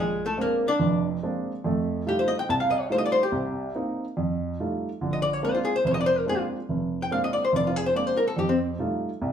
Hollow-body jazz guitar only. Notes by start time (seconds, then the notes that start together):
0.00 G#3 G#4
0.26 A3 A4
0.41 A#3 A#4
0.68 D4 D5
2.09 G4
2.19 C5
2.28 D#5
2.39 G5
2.50 A5
2.60 F5
2.71 D#5
2.80 C#5
2.92 D5
2.98 D#5
3.06 D5
3.12 C5
3.23 G4
5.13 D#5
5.22 D5
5.33 C#5
5.45 C5
5.55 F4
5.65 G#4
5.76 C5
5.87 D5
5.94 D#5
6.01 D5
6.06 C5
6.18 A#4
6.29 G#4
6.38 F4
7.02 G5
7.12 F5
7.24 D#5
7.33 D5
7.45 C5
7.56 D5
7.67 F4
7.76 G#4
7.86 C5
7.96 D5
8.07 C5
8.17 A#4
8.28 A4
8.39 G4
8.49 C4